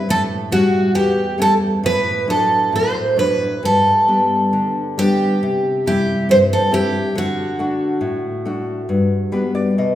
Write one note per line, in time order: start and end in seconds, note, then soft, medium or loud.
0.09 0.92 A2 medium
0.09 0.22 A4 loud
0.51 1.21 G3 soft
0.51 1.21 A3 soft
0.51 1.21 C#4 medium
0.51 0.95 F#4 medium
0.95 1.80 E2 medium
0.95 1.40 G4 medium
1.38 1.74 G3 soft
1.38 1.74 A3 soft
1.38 1.74 C#4 medium
1.38 1.53 A4 medium
1.83 2.69 A2 medium
1.83 2.26 B4 medium
2.27 2.99 F#3 soft
2.27 2.99 A3 soft
2.27 2.99 D4 soft
2.27 2.75 A4 medium
2.72 3.60 A2 medium
2.72 3.19 C5 medium
3.17 3.53 F#3 soft
3.17 3.53 A3 soft
3.17 3.53 D4 soft
3.17 3.65 B4 medium
3.63 4.50 G2 medium
3.63 4.98 A4 medium
4.08 4.79 G3 soft
4.08 4.79 B3 soft
4.08 4.80 D4 soft
4.53 5.39 D3 medium
4.98 5.33 G3 soft
4.98 5.33 B3 soft
4.98 5.33 D4 medium
4.98 5.86 G4 medium
5.43 6.27 C3 medium
5.86 6.55 G3 soft
5.86 6.56 C4 soft
5.86 6.56 E4 soft
5.86 6.27 G4 medium
6.29 7.13 G2 medium
6.29 6.37 C5 medium
6.53 6.72 A4 medium
6.71 7.06 G3 medium
6.71 7.06 C4 soft
6.71 7.07 E4 medium
6.71 7.17 G4 medium
7.15 8.00 D3 medium
7.15 9.76 F#4 medium
7.59 8.29 A3 soft
7.59 8.29 D4 soft
7.59 8.29 F#4 soft
8.01 8.86 A2 medium
8.45 8.80 A3 soft
8.45 8.81 D4 soft
8.45 8.81 F#4 medium
8.89 9.75 G2 medium
9.32 9.69 G3 soft
9.32 9.69 B3 soft
9.32 9.69 D4 soft
9.32 9.54 B4 medium
9.55 9.76 D5 medium
9.78 9.95 B2 medium
9.78 9.95 D#5 medium